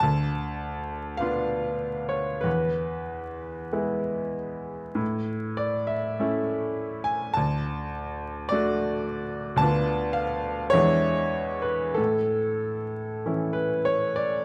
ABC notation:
X:1
M:4/4
L:1/16
Q:1/4=50
K:A
V:1 name="Grand piano"
a4 =f3 c B6 z2 | z2 d e4 g a4 d4 | a2 =f2 c3 B A4- A B c d |]
V:2 name="Grand piano"
D,,4 [B,D=F]4 E,,4 [G,B,E]4 | A,,4 [A,CE]4 D,,4 [A,DF]4 | [D,,B,D=F]4 [E,,G,DE]4 A,,4 [E,CE]4 |]